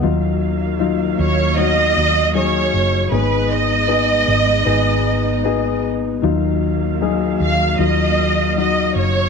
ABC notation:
X:1
M:4/4
L:1/8
Q:1/4=78
K:Ebm
V:1 name="Violin section"
z3 d e2 d2 | c e6 z | z3 f e2 e d |]
V:2 name="Upright piano"
[G,EF]2 [G,EF]2 [G,EG]2 [G,EA]2 | [CEA]2 [CEA]2 [CEA]2 [CEA]2 | [G,EF]2 [G,EA]2 [G,EF]2 [G,EG]2 |]
V:3 name="Upright piano" clef=bass
E,3 z4 z | A,,3 z4 z | E,3 z4 z |]
V:4 name="String section"
[E,G,B,f]8 | [A,CE]8 | [E,G,B,f]8 |]
V:5 name="Fingered electric bass" clef=bass
E,,3 E,,2 E,,2 G,,, | A,,,3 A,,, A,,,4 | E,,3 E,, E,,3 G,,, |]